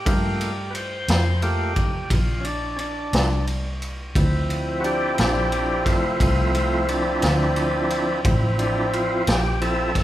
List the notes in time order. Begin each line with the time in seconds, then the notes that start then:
Already playing: G4
0.05 G2 A3 A#3 F4, kick, ride
0.41 ride
0.70 B4
0.75 C5, ride
1.08 F2, snare, ride
1.42 A3 A#3 F4 G4, ride
1.76 kick, ride
2.10 A#1 F4, kick, ride
2.40 C#4
2.45 D4, ride
2.76 C#4 D4, ride
3.13 C2, snare, ride
3.47 ride
3.82 ride
4.15 D2 F3 C4 E4, kick, ride
4.50 ride
4.80 D4 F#4, ride
4.85 G4
5.18 A#1 D4 G4, snare, ride
5.52 D4 G4, ride
5.85 A3 F4, kick, snare, ride
6.19 C2 A3 F4, kick, ride
6.54 A3 F4, ride
6.88 D4, ride
7.22 D2, snare, ride
7.56 ride
7.90 ride
8.25 A1 F3 C4 E4, kick, ride
8.59 D4, ride
8.93 F4, ride
9.27 A#1 G4, snare, ride
9.61 F3 C4 E4 A4, ride
9.95 kick, snare, ride